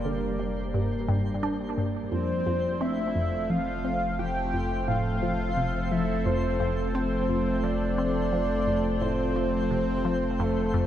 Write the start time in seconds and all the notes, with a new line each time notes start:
Already playing: F1 G3 A#3 D4 A#4 C5 D5
0.05 D3
0.39 G3
0.74 G2
1.08 G2
1.43 D4
1.78 G2
2.12 F1 F2 F3 C5
2.46 F2
2.71 A3
2.81 C4 E5
3.15 F2
3.39 C4
3.50 F3 F5
3.84 C4
4.19 F3 G5
4.41 A4
4.54 F2
4.80 C5
4.88 A2 F5
5.22 F3
5.57 C3
5.91 F3 E5
6.26 F2 C5
6.60 F2
6.95 C4 C5
7.29 F2
7.64 F3 D5
7.98 C4
8.33 F3
8.67 F2
9.01 A2 C5
9.36 F3
9.71 C3
10.05 F3
10.39 F2 A4
10.74 F2